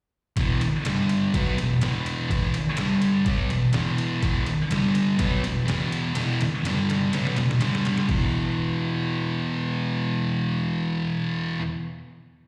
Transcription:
0.36 E2 B2 E3, kick, ride
0.61 muted distorted electric guitar stroke, ride
0.85 G2 D3 G3, snare, ride
1.09 ride
1.34 B2 F#3 B3, kick, ride
1.57 E2 B2, ride
1.81 E2 B2 E3, snare, ride
2.06 ride
2.29 E2 B2 E3, kick, ride
2.54 muted distorted electric guitar stroke, ride
2.77 G2 D3 G3, snare, ride
3.02 ride
3.24 B2 F#3 B3, kick, ride
3.50 E2 B2, ride
3.73 E2 B2 E3, snare, ride
3.98 ride
4.21 E2 B2 E3, kick, ride
4.46 muted distorted electric guitar stroke, ride
4.70 G2 D3 G3, snare, ride
4.95 ride
5.18 B2 F#3 B3, kick, ride
5.44 E2 B2, ride
5.66 E2 B2 E3, snare, ride
5.92 ride
6.14 E2 B2 E3, snare, ride
6.40 muted distorted electric guitar stroke, snare, ride
6.63 G2 D3 G3, snare, ride
6.90 snare, ride
7.12 B2 F#3 B3, snare, ride
7.27 snare
7.36 E2 B2, snare, ride
7.51 snare
7.59 G2 D3 G3, snare, ride
7.75 snare
7.85 snare, ride
7.97 snare
8.08 E2 B2 E3, kick, crash

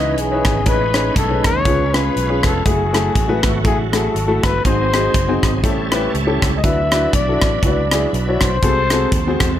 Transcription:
Already playing: C#2 E3 C#4 D#4 E4 B4 D#5
0.16 B1 G#4, closed hi-hat
0.31 D#4 E4 B4 C#5
0.45 G#1, kick, cross-stick, closed hi-hat
0.65 A1 A2 G#3 C#4 D#4 G#4 B4, kick, closed hi-hat
0.94 C#4 D#4 G#4 C#5, cross-stick, closed hi-hat
1.16 B1 A4, kick, closed hi-hat
1.30 C#4 D#4 G#4 B4
1.44 D#2 C#5, kick, cross-stick, closed hi-hat
1.65 C#2 C#3 G#3 C#4 F4 G#4 B4, kick, closed hi-hat
1.93 C#4 F4 G#4 B4, cross-stick, closed hi-hat
2.16 B1, closed hi-hat
2.29 C#4 F4 G#4 B4
2.43 F1 A4, kick, cross-stick, closed hi-hat
2.65 F#1 F#3 G#3 A3 E4 F#4 G#4, kick, closed hi-hat
2.73 A3
2.93 A3 E4 F#4 A4, cross-stick, closed hi-hat
3.15 A1, kick, closed hi-hat
3.29 A3 E4 F#4 B4
3.43 G#1, kick, cross-stick, closed hi-hat
3.64 A1 A3 E4 F#4 G#4, kick, closed hi-hat
3.92 A3 E4 F#4 G#4 A4, cross-stick, closed hi-hat
4.15 G#1, closed hi-hat
4.27 A3 E4 F#4 A4
4.43 G1 B4, kick, cross-stick, closed hi-hat
4.64 G#1 G#2 F#3 C4 D#4 F#4 G#4 C5, kick, closed hi-hat
4.93 C4 D#4 F#4 G#4, cross-stick, closed hi-hat
5.14 F#1, kick, closed hi-hat
5.28 C4 D#4 F#4 G#4
5.43 G#1, kick, cross-stick, closed hi-hat
5.63 A1 A2 G3 C#4 E4 G4 A4, kick, closed hi-hat
5.92 C#4 E4 G4 B4, cross-stick, closed hi-hat
6.14 C#2, closed hi-hat
6.27 C#4 E4 G4 A4
6.42 C#2, kick, cross-stick, closed hi-hat
6.57 D#5
6.63 D2 D3 F#3 D4 E4 F#4 B4 E5, kick, closed hi-hat
6.92 D4 E4 F#4 B4, cross-stick, closed hi-hat
7.13 B1 D5, kick, closed hi-hat
7.28 D4 E4 F#4 A4
7.42 A1, kick, cross-stick, closed hi-hat
7.63 C#2 D4 E4 F#4 B4 D5, kick, closed hi-hat
7.91 D4 E4 F#4 G#4, cross-stick, closed hi-hat
8.13 B1, closed hi-hat
8.28 D4 E4 F#4 C#5
8.41 B1 C5, kick, cross-stick, closed hi-hat
8.62 C2 C3 G#3 C4 F#4 G#4 A4, kick, closed hi-hat
8.90 C4 F#4 G#4 A4, cross-stick, closed hi-hat
9.12 D#2, kick, closed hi-hat
9.27 C4 F#4 G#4 C5
9.40 E2, kick, cross-stick, closed hi-hat

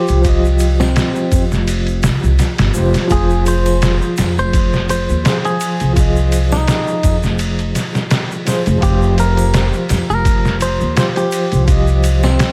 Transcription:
Already playing: F3 F4 G4 C5
0.08 C2, ride, shaker
0.22 F3 F4, kick, ride, shaker
0.26 G4 D#5
0.45 shaker
0.59 ride, shaker
0.80 C4, snare, triangle, shaker
0.96 snare, ride, shaker
1.15 shaker
1.32 F2, kick, ride, triangle, shaker
1.52 F1, snare, shaker
1.67 ride, shaker
1.87 ride, shaker
2.03 C2, snare, ride, shaker
2.24 C2, shaker
2.39 snare, ride, shaker
2.58 G1, snare, ride, shaker
2.74 F1 F3 F4 G4 C5, shaker
2.94 snare, ride, shaker
3.08 F1 F3 F4, kick, ride, shaker
3.12 G#4 C5
3.30 shaker
3.46 C5, ride, shaker
3.66 ride, triangle, shaker
3.82 snare, ride, shaker
4.02 shaker
4.17 F2, snare, ride, triangle, shaker
4.38 F1 C5, shaker
4.53 kick, ride, shaker
4.73 snare, shaker
4.89 C5, ride, shaker
5.09 D#2, shaker
5.23 F3 F4 G#4 C5, snare, ride, shaker
5.45 G#4, ride, shaker
5.61 ride, shaker
5.80 C2, ride, shaker
5.93 F3 F4, kick, ride, shaker
5.98 G#4 D#5
6.16 shaker
6.32 ride, shaker
6.52 D#4, snare, triangle, shaker
6.67 snare, ride, shaker
6.87 shaker
7.03 F2, kick, ride, triangle, shaker
7.23 F1, snare, shaker
7.39 ride, shaker
7.59 ride, shaker
7.75 snare, ride, shaker
7.95 snare, shaker
8.11 snare, ride, shaker
8.31 shaker
8.45 F3 F4 G#4 C5, snare, ride, shaker
8.66 F1, ride, shaker
8.78 F3 F4, kick, ride
8.82 F1 G4 C5, shaker
9.02 shaker
9.18 A#4, ride, shaker
9.37 ride, triangle, shaker
9.54 snare, ride, shaker
9.73 shaker
9.89 F2, snare, ride, triangle, shaker
10.09 F1 A#4, shaker
10.25 kick, ride, shaker
10.45 snare, shaker
10.61 C5, ride, shaker
10.81 D#2, shaker
10.95 F3 F4 G4 C5, snare, ride, shaker
11.16 G4, ride, shaker
11.32 ride, shaker
11.52 C2, ride, shaker
11.65 F3 F4, kick, ride, shaker
11.70 G4 D#5
11.87 shaker
12.04 ride, shaker
12.23 C4, snare, triangle, shaker
12.39 snare, ride, shaker

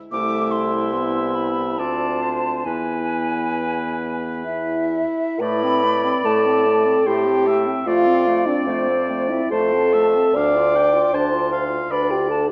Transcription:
0.12 C2 A3 E4 E5 D6
0.51 C6
0.93 B3
1.35 B5
1.78 D2 C4 F4 D5 A5
2.22 C5
2.65 E2 B3 E4 B4 G#5
4.45 E4 E5
5.40 A2 A3 B4 D5 B5
5.62 C4
5.83 A3
6.04 C4
6.24 A2 A3 A4 A5
6.45 C4
6.66 A3
6.85 C4
7.05 A2 A3 G4 C5 G5
7.26 C4
7.47 A3 E5
7.66 C4
7.86 F2 A3 F4 D5 F5
8.07 C4
8.27 A3
8.46 C4 D4 D5
8.66 F2 A3 C4 C5
8.88 C4
9.10 A3
9.30 C4 E4 E5
9.51 F2 A3 A4 C5 A5
9.73 C4
9.93 A3 E5
10.16 C4
10.35 D2 D4 D5 F5 D6
10.56 F4
10.75 D4 G5
10.94 F4
11.13 D2 D4 C5 A5 C6
11.33 F4
11.52 D4 F5
11.70 F4
11.90 D2 D4 B4 D5 B5
12.10 F4 G4 G5
12.28 D4 A4 A5
12.49 F4 G4

